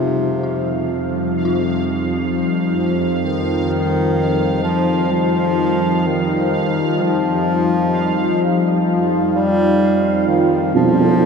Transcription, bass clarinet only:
Already playing: C3
3.24 D#3
4.63 F3
5.12 F3
6.07 D#3
7.01 F3
9.34 G3
10.27 D#3
10.76 F3

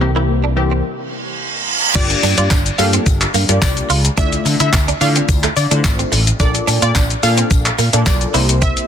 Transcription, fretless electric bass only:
Already playing: C2
1.95 G1
2.23 G2
2.38 G2
2.51 G1
2.79 G2
3.06 G1
3.34 G2
3.49 G2
3.62 C2
3.90 C#2
4.18 D2
4.45 D3
4.60 D3
4.73 D2
5.01 D3
5.29 D2
5.56 D3
5.71 D3
5.84 G#1
6.12 A1
6.40 A#1
6.68 A#2
6.82 A#2
6.96 A#1
7.23 A#2
7.51 A#1
7.78 A#2
7.93 A#2
8.06 B1
8.34 C2

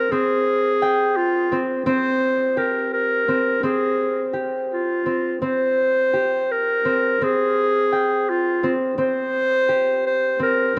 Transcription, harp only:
Already playing: C4 G4
0.12 C4
0.82 G5
1.52 C4
1.86 C4
2.57 G4
3.28 C4
3.63 C4
4.33 G4
5.06 C4
5.42 C4
6.13 G4
6.85 C4
7.21 C4
7.92 G5
8.63 C4
8.98 C4
9.69 G4
10.39 C4

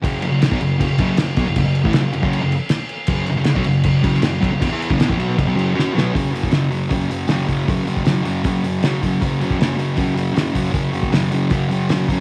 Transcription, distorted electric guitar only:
0.02 F#2 C#3 F#3
0.23 F#2 C#3
0.32 F#2 C#3
0.42 muted distorted electric guitar stroke
0.51 B2 F#3
0.61 F#2 C#3
0.79 F#2 C#3
0.99 F#2 C#3 F#3
1.18 F#2 C#3
1.37 B2 F#3
1.46 F#2 C#3
1.56 F#2 C#3
1.65 F#2 C#3
1.84 A2 E3
1.94 F#2 C#3
2.03 F#2 C#3
2.13 F#2 C#3
2.22 F#2 C#3 F#3
2.42 F#2 C#3
3.08 F#2 C#3 F#3
3.29 F#2 C#3
3.37 F#2 C#3
3.47 muted distorted electric guitar stroke
3.55 B2 F#3
3.65 F#2 C#3
3.84 F#2 C#3
4.03 F#2 C#3 F#3
4.23 F#2 C#3
4.41 B2 F#3
4.51 F#2 C#3
4.61 E2 B2
4.71 E3 B3 E4
4.90 F#2 C#3
4.99 E2 B2
5.08 A2 E3
5.17 B2 F#3 B3
5.37 F#2 C#3
5.47 B2 F#3
5.55 F#2 C#3 F#3
5.75 F#3 C#4 F#4
5.94 B2 F#3 B3
6.14 F#2 C#3 F#3
6.32 C#3 F#3
6.51 F#2 C#3 F#3
6.71 F#2 C#3 F#3
6.89 F#2 C#3 F#3
7.09 C#3 F#3
7.28 F#2 C#3 F#3
7.48 C#3 F#3
7.66 F#2 C#3 F#3
7.85 C#3 F#3
8.05 F#2 C#3 F#3
8.23 F#2 C#3 F#3
8.44 F#2 C#3 F#3
8.64 C#3 F#3
8.83 F#2 C#3 F#3
9.02 C#3 F#3
9.22 F#2 C#3 F#3
9.40 C#3 F#3
9.59 F#2 C#3 F#3
9.77 F#2 C#3 F#3
9.96 F#2 C#3 F#3
10.14 C#3 F#3
10.33 F#2 C#3 F#3
10.53 C#3 F#3
10.71 F#2 C#3 F#3
10.91 C#3 F#3
11.11 F#2 C#3 F#3
11.32 F#2 C#3 F#3
11.50 F#2 C#3 F#3
11.69 C#3 F#3
11.90 F#2 C#3 F#3
12.09 C#3 F#3

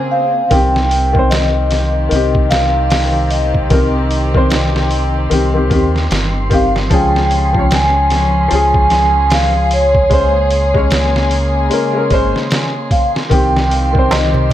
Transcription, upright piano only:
0.50 D#3 C4 G4
1.13 D#3 C4
1.19 C5
2.09 D#3 C4
2.15 G4
3.70 D#3 C4 A#4
4.34 D#3 C4 C5
5.30 D#3 C4 G4
5.54 D#3 C4 G4
5.70 D#3 C4 G4
6.50 D#3 C4 G4
6.90 F3 C#4 G#4
7.53 F3 C#4
7.59 C#5
8.48 F3 C#4
8.54 G#4
10.10 G#3 C#4 C5
10.74 G#3 C#4 C#5
11.70 G#3 C#4 A#4
11.93 G#3 C#4 A#4
12.10 G#3 C#4 C5
13.29 D#3 C4 G4
13.93 D#3 C4
13.99 C5

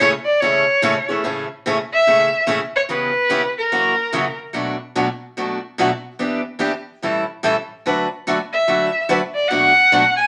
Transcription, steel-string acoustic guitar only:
0.00 A2 C#3 E3 A3 C#4 G#4
0.42 A2 C#3 E3 A3 C#4 G#4
0.82 A2 C#3 E3 A3 C#4 G#4
1.09 E3 A3 C#4 G#4
1.24 A2 C#3 E3 A3 C#4 G#4
1.66 A2 C#3 E3 A3 C#4 G#4
2.07 A2 C#3 E3 A3 C#4 G#4
2.46 A2 C#3 E3 A3 C#4 G#4
2.89 C#3 E3 B3 C#4 G4
3.29 C#3 E3 B3 C#4 G4
3.72 F#2 C#3 E3 A#3 C#4 F#4
4.13 F#2 C#3 E3 A#3 C#4 F#4
4.53 B2 F#3 A3 D4 F#4
4.95 B2 F#3 A3 D4 F#4
5.37 B2 F#3 A3 D4 F#4
5.78 B2 F#3 A3 D4 F#4
6.19 E3 B3 D4 G4
6.59 E3 B3 D4 G4
7.03 A2 E3 G3 C#4 E4 A4
7.43 A2 E3 G3 C#4 E4 A4
7.86 D3 F#3 A3 D4 F#4 B4
8.27 D3 F#3 A3 D4 F#4 B4
8.68 D3 F#3 A3 D4 F#4 B4
9.09 D3 F#3 A3 D4 F#4 B4
9.50 B2 F#3 A3 D4 F#4
9.92 B2 F#3 A3 D4 F#4

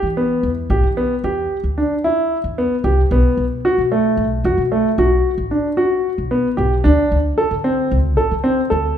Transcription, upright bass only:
0.03 E3
0.43 E2
0.70 B1
0.83 E3
1.24 E2
1.64 D2
2.44 E2
2.84 C2
3.11 B1
3.37 B1
3.78 B2
4.17 B1
4.44 F#2
4.58 B2
4.98 B1
5.38 A1
6.18 B1
6.58 B1
6.85 D2
7.11 D2
7.51 D3
7.91 D2
8.18 A1
8.31 D3
8.71 D2

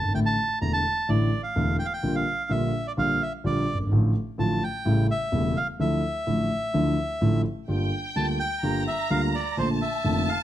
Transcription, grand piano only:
0.02 G1
0.08 G#1
0.14 A1 A2 D3 E3 A3 E4
0.61 E1 E2 D3 E3 A3 E4
1.09 A1 A2 D3 E3 A3 E4
1.55 E1 E2 D3 E3 A3 E4
2.03 A#1 A#2 D3 G3 A#3 F4
2.49 A#1 A#2 D3 G3 A#3 F4
2.97 A#1 A#2 D3 G3 A#3 F4
3.44 A#1 A#2 D3 G3 A#3 F4
3.74 F#1
3.80 G1
3.86 G#1
3.92 A1 A2 D3 F3 A3 F4
4.38 A1 A2 D3 F3 A3 F4
4.85 A1 A2 C#3 G3 A3 E4
5.32 E1 E2 C#3 G3 A3 E4
5.79 D2 D3 F3 A3 E4
6.27 A1 A2 D3 F3 A3 E4
6.74 D2 D3 F3 A3 E4
7.21 A1 A2 D3 F3 A3 E4
7.68 G1 G2 D3 G3 A#3 F4
8.16 D2 D3 G3 A#3 F4
8.63 G1 G2 D3 G3 A#3 F4
9.10 D2 D3 G3 A#3 F4
9.57 A#1 A#2 D3 A3 A#3 F4
10.04 F1 F2 D3 A3 A#3 F4

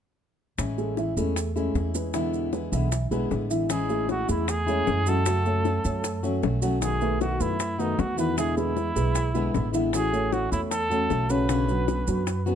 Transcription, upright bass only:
0.58 A1
1.17 E2
1.75 E2
2.72 B1
3.11 B1
3.31 A1
4.29 E2
4.87 F#2
5.85 F#2
6.43 B1
7.40 F#2
7.98 E2
8.96 B1
9.55 A1
10.52 E2
11.11 B1
12.08 F#2

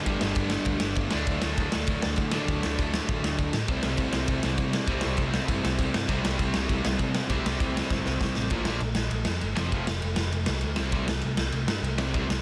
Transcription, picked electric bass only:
0.06 G1
0.23 G1
0.36 G1
0.66 D2
0.82 G1
0.97 G1
1.14 D2
1.27 D2
1.44 D2
1.58 D2
1.75 D2
1.88 D2
2.05 D2
2.18 D3
2.48 D2
2.64 D2
2.79 D2
3.09 A1
3.24 D2
3.39 D2
3.54 A2
3.69 C2
3.84 C2
3.98 C2
4.14 C2
4.29 C2
4.44 C2
4.58 C3
4.88 C2
5.05 C2
5.19 C2
5.49 G1
5.64 C2
5.79 C2
5.95 G2
6.09 C2
6.25 C2
6.39 C2
6.55 C2
6.70 C2
6.85 C2
6.99 C3
7.29 C2
7.45 C2
7.61 C2
7.91 G1
8.06 C2
8.21 C2
8.36 A1
8.51 A#1
8.66 A#1
8.80 A#1
8.96 A#1
9.11 A#1
9.26 F2
9.42 G1
9.56 F1
9.72 F1
9.89 F1
10.03 F1
10.17 F1
10.32 F1
10.47 C2
10.62 D2
10.79 C2
10.93 C2
11.09 C2
11.24 C2
11.38 C2
11.52 C2
11.67 G2
11.82 C2
11.99 C2
12.15 C2
12.30 C2

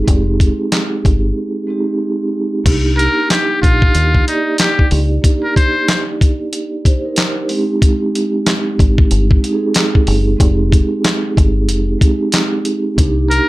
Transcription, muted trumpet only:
2.97 A#4
3.31 G4
3.62 F4
4.28 D#4
4.59 G4
5.43 A#4
5.56 C5
13.29 A#4

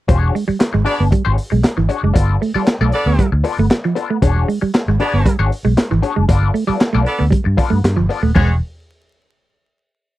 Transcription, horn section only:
0.85 B3 D4 G#4 D5
2.93 B3 D4 A4 D5
5.00 B3 D4 G#4 D5
7.06 B3 D4 A4 D5
8.35 G#3 C#4 F#4 C#5

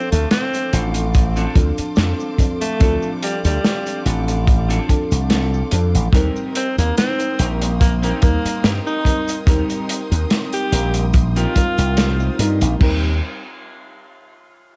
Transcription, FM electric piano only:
Already playing: F3 C4 D4 A4
1.55 F3 C4 D4 A4
2.39 F3 C4 D4 A4
2.79 F3 C4 D4 A4
4.89 F3 C4 D4 A4
5.72 F3 C4 D4 A4
6.12 G3 C4 D#4 A#4
8.22 G3 C4 D#4 A#4
9.05 G3 C4 D#4 A#4
9.46 G3 C4 D#4 A#4
11.55 G3 C4 D#4 A#4
12.38 G3 C4 D#4 A#4
12.78 G3 C4 D#4
12.83 A#4

